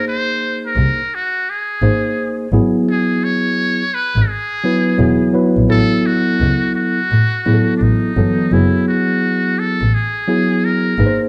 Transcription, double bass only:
X:1
M:4/4
L:1/16
Q:"Swing 16ths" 1/4=85
K:F#dor
V:1 name="Double bass" clef=bass
z4 ^B,,,2 z4 G,,,2 z2 G,,,2- | G,,,6- G,,, G,,,4- G,,, E,,,3 ^A,,, | A,,,2 z2 C,,2 z2 A,,2 A,,2 A,,,2 =G,,,2 | F,,,6- F,,, A,,,4- A,,, z2 G,,,2 |]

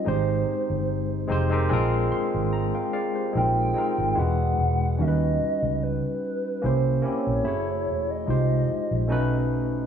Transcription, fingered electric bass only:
X:1
M:4/4
L:1/16
Q:"Swing 16ths" 1/4=73
K:Bbmix
V:1 name="Fingered electric bass" clef=bass
A,,,2 z G,,,3 F,,,2 B,,,2 z A,,,2 z3 | B,,,2 z A,,, =E,,,2 E,,,2 _E,,2 z _D,,2 z3 | C,,2 z B,,, _G,,,2 _F,,,2 C,,2 z B,,, =B,,,4 |]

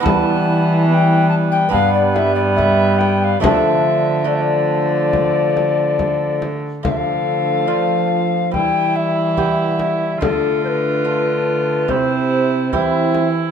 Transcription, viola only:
X:1
M:4/4
L:1/16
Q:1/4=71
K:Ddor
V:1 name="Viola"
B,4 B,4 B,8 | A,4 A,8- A,3 z | A,8 E8 | F8 E4 E4 |]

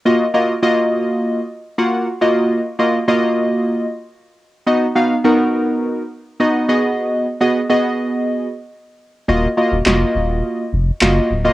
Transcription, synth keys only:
X:1
M:4/4
L:1/16
Q:1/4=104
K:Ebm
V:1 name="Synth keys"
[B,FGe] z [B,FGe] z [B,FGe]4- [B,FGe] z3 [B,FGg]2 z [B,FGe]- | [B,FGe]2 z [B,FGe] z [B,FGe]4- [B,FGe] z6 | [=B,^D^F^d] z [B,DF=f] z [B,D^F_B]4- [=B,DF_B] z3 [=B,DFd]2 [CGAe]2- | [CGAe]2 z [CGAe] z [CGAe]4- [CGAe] z6 |
[B,FGe] z [B,FGe] z [B,FGe]4- [B,FGe] z3 [B,FGe]2 z [B,FGe] |]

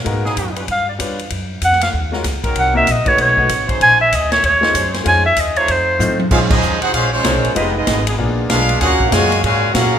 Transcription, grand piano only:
X:1
M:4/4
L:1/8
Q:"Swing" 1/4=192
K:Bbm
V:1 name="Grand piano"
[A,_CEGB] z4 z [=G,^C=DF=B] z | z4 z [A,DFGB] z2 | z [B,CEGB] z [=A,DEG_c]2 [A,^C^D^F=B] z2 | z4 z [A,DEFc] z2 |
[A,DEFc] z4 z [=A,CEFc] z | [A,DEFc] z4 z [A,DEFd] z | [A,_CEF=G] z3 [B,C=DFA]3 z | z2 [G,B,DFA] z3 [G,B,DFA] z |]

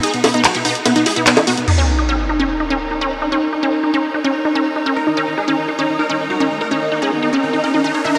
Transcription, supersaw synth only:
X:1
M:4/4
L:1/16
Q:1/4=146
K:Fblyd
V:1 name="Supersaw synth"
A =B, B, B, G B, B, z B, B, A B, B, =E B, B, | z16 | z16 | B E E E A E E z E E B E E G E E |
B E E E A E E z E E B E E d E E |]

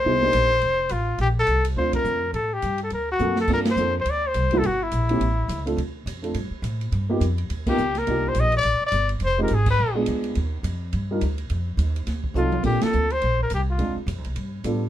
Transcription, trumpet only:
X:1
M:4/4
L:1/8
Q:"Swing" 1/4=210
K:Bb
V:1 name="Trumpet"
c6 F2 | G A2 z c B3 | A G2 A B ^F2 A | B c2 c d c2 A |
_G =E6 z | z8 | z4 z G2 ^A- | ^A c e d2 d2 z |
c B _A _c2 z3 | z8 | z6 F2 | G A2 c2 B G F- |
F z6 z |]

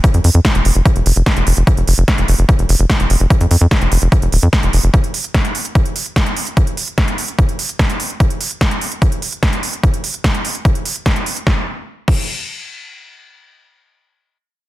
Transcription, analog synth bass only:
X:1
M:4/4
L:1/16
Q:1/4=147
K:Ebdor
V:1 name="Analog synth bass" clef=bass
z F,, F,, F,, z F,,, F,,, F,,, z F,,, F,,, F,,, z F,,, F,,, F,,, | z F,,, F,,, F,,, z F,,, F,,, F,,, z F,,, F,,, F,,, z F,,, F,,, F,,, | z F,, F,, F,, z F,,, F,,, F,,, z F,,, E,,, F,, z F,,, F,,, F,,, | z16 |
z16 | z16 | z16 | z16 |
z16 |]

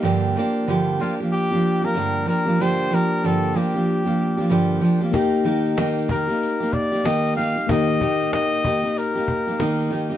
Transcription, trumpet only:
X:1
M:4/4
L:1/16
Q:"Swing 16ths" 1/4=94
K:Gm
V:1 name="Trumpet"
z6 F2 G3 B3 B2 | c2 B2 A2 G8 z2 | z6 B4 d2 e2 f2 | e4 e4 B6 z2 |]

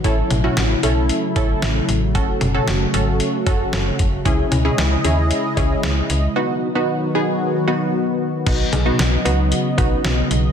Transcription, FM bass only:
X:1
M:4/4
L:1/16
Q:1/4=114
K:Bmix
V:1 name="FM bass" clef=bass
A,,,2 A,,,2 A,,,2 B,,,3 z A,,,2 A,,,2 A,,,2 | F,,,2 F,,,2 F,,,2 G,,,3 z F,,,2 F,,,2 F,,,2 | C,,2 C,,2 C,,2 D,,3 z C,,2 C,,2 C,,2 | z16 |
B,,,2 B,,,2 B,,,2 C,,3 z B,,,2 B,,,2 B,,,2 |]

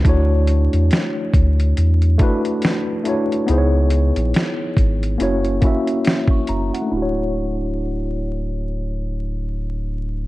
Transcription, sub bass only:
X:1
M:4/4
L:1/16
Q:"Swing 16ths" 1/4=70
K:D
V:1 name="Sub bass" clef=bass
D,,3 E,, z2 D,,2 E,,2 z6 | C,,3 _B,,, z2 ^G,,,2 F,,,2 z4 F,,, z | D,,,16 |]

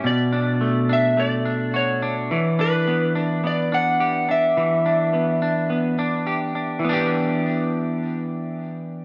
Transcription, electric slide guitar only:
X:1
M:4/4
L:1/16
Q:1/4=106
K:Em
V:1 name="Electric slide guitar"
d6 e2 d4 ^c3 z | z2 B4 z2 d2 f4 e2- | e12 z4 | z16 |]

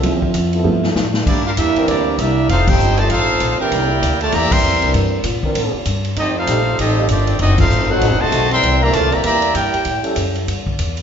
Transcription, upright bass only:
X:1
M:4/4
L:1/8
Q:"Swing" 1/4=196
K:Gmix
V:1 name="Upright bass" clef=bass
D,,2 F,,2 G,,2 A,,2 | [K:C] G,,2 E,, z D,,2 C,,2 | F,,,2 G,,,2 A,,,2 _B,,, z | C,,2 D,,2 E,, z (3F,, E,, C,, |
G,,2 _B,, z A,, z G,,2 | F,,2 _B,,,2 A,,,2 G,,,2 | ^F,,,2 _A,,,2 (3=A,,, F,,, ^D,,, B,,,2 | C,,2 (3D,, C,, _B,,, E,,2 G,, z |
A,, z ^F,,2 G,,2 E,,2 |]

